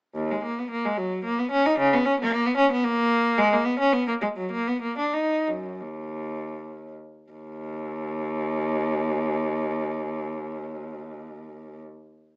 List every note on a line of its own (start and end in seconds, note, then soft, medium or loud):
0.15 0.29 D#2 medium
0.31 0.44 G#3 medium
0.43 0.57 A#3 medium
0.59 0.71 B3 medium
0.70 0.84 A#3 medium
0.85 0.98 G#3 medium
0.97 1.25 F#3 medium
1.24 1.38 A#3 medium
1.39 1.52 B3 medium
1.51 1.65 C#4 medium
1.66 1.79 D#4 medium
1.79 1.92 C#3 medium
1.93 2.06 B3 medium
2.05 2.18 C#4 medium
2.20 2.32 B3 medium
2.32 2.45 A#3 medium
2.46 2.59 B3 medium
2.57 2.71 C#4 medium
2.72 2.85 B3 medium
2.84 3.38 A#3 loud
3.38 3.51 G#3 medium
3.53 3.66 A#3 medium
3.65 3.79 B3 medium
3.80 3.93 C#4 medium
3.93 4.07 B3 medium
4.08 4.13 A#3 medium
4.22 4.27 G#3 medium
4.37 4.51 F#3 medium
4.52 4.66 A#3 medium
4.68 4.82 B3 medium
4.82 4.97 A#3 medium
4.98 5.14 D4 medium
5.14 5.47 D#4 medium
5.47 5.81 F#2 soft
5.81 6.91 D#2 medium
7.31 11.81 D#2 medium